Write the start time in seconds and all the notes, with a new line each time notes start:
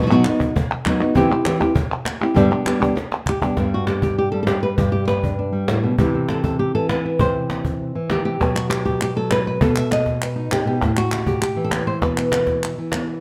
0.02 F#3 B3 D#4 F#4
0.06 F#3 B3 D#4 F#4
0.10 B2 F#3 B3 D#4 F#4
0.25 B3 D#4 F#4, cajon slap, clap
0.40 cajon bass, clap
0.56 muted nylon-string guitar stroke, cajon bass
0.71 cajon slap
0.85 F#3 B3 D#4 F#4, cajon bass, cajon slap, clap
1.00 B3 D#4 F#4
1.15 C3 E3 C4 E4 G4, cajon bass
1.30 C4 E4 G4, cajon slap
1.45 E3 C4 E4 G4, cajon slap, clap
1.60 C4 E4 G4, cajon bass, cajon slap
1.75 muted nylon-string guitar stroke, cajon bass
2.05 cajon slap, clap
2.21 C4 E4 G4
2.34 G2 D3 G3 B3 D4 G4, cajon bass
2.51 G3 B3 D4 G4
2.65 G3 B3 D4 G4, cajon slap, clap
2.80 G3 B3 D4 G4, cajon bass
2.95 muted nylon-string guitar stroke, cajon slap
3.12 cajon slap
3.26 G4, cajon bass, clap
3.42 G3 B3 D4 G4, cajon bass
3.57 G2 G3 B3 D4, cajon bass, cajon slap
3.74 F#4
3.87 G4, cajon slap
4.02 G4, cajon bass
4.18 G4
4.32 G3 A4
4.43 G4 A4
4.47 cajon slap
4.63 B4
4.78 G2 G4, cajon bass
4.92 G4
5.08 B4, cajon slap
5.23 D4, cajon bass
5.39 D4
5.53 G3
5.68 A2, cajon slap
5.83 B2, cajon slap
5.98 C3 E3 C4 E4 G4, cajon bass
6.15 C4
6.29 A4, cajon slap
6.44 A4, cajon bass
6.59 G4
6.75 E3 A4
6.89 B4, cajon slap
7.05 E4
7.19 C3 C5, cajon bass
7.50 cajon slap
7.65 cajon bass
7.95 E3
8.10 D#3 G4, cajon slap
8.25 C3 G4, cajon slap
8.40 B2 F#3 B3, cajon bass, cajon slap
8.55 F#4, clap
8.70 G4, cajon slap, clap
8.85 G4, cajon bass, cajon slap
9.01 G4, clap
9.16 F#3 A4
9.31 B4, cajon slap, clap
9.47 B4
9.61 B2 A4, cajon bass
9.76 E5, clap
9.91 D#5, cajon slap, clap
10.06 cajon bass, cajon slap
10.22 B4, clap
10.36 D#4
10.52 C3 G4, cajon slap, clap
10.65 B2 G4, cajon slap
10.81 A2, cajon bass, cajon slap
10.97 F#4, clap
11.12 G4, cajon slap, clap
11.27 G4, cajon bass
11.42 G4, clap
11.56 E3
11.64 A4
11.71 B4, cajon slap, clap
11.87 C5, cajon slap
12.02 B2 B4, cajon bass, cajon slap
12.18 B3, clap
12.32 E4, cajon slap, clap
12.47 cajon bass, cajon slap
12.63 E4, clap
12.78 E3
12.92 B3, cajon slap, clap